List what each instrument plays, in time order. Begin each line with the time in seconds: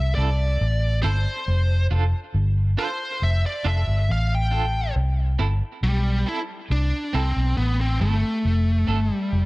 Already playing: fingered electric bass C2, lead electric guitar E5
0.15 fingered electric bass C2, clean electric guitar C4 E4 A4, lead electric guitar D5
0.61 fingered electric bass A1
1.03 fingered electric bass G1, clean electric guitar C4 E4 A4, lead electric guitar C5
1.48 fingered electric bass F1
1.91 fingered electric bass F1, clean electric guitar D4 F4 A4
2.34 fingered electric bass G1
2.77 clean electric guitar D4 F4 A4, lead electric guitar C5
3.22 fingered electric bass F1, lead electric guitar E5
3.46 lead electric guitar D5
3.64 fingered electric bass F1, clean electric guitar D4 F4 A4, lead electric guitar E5
3.87 fingered electric bass G1
4.09 fingered electric bass A1, lead electric guitar F5
4.35 lead electric guitar G5
4.51 clean electric guitar D4 F4 A4
4.96 fingered electric bass C2
5.39 fingered electric bass G1, clean electric guitar C4 E4 A4
5.83 fingered electric bass B1, lead electric guitar G3
6.26 clean electric guitar C4 E4 A4, lead electric guitar E4
6.70 fingered electric bass C2, lead electric guitar D4
7.13 fingered electric bass C2, clean electric guitar C4 E4 A4, lead electric guitar C4
7.36 fingered electric bass B1
7.57 fingered electric bass A1, lead electric guitar B3
7.81 lead electric guitar C4
8.01 fingered electric bass G1, lead electric guitar A3, clean electric guitar C4 E4 A4
8.45 fingered electric bass F1
8.87 fingered electric bass G1, clean electric guitar C4 D4 A4
9.13 lead electric guitar G3
9.33 fingered electric bass F1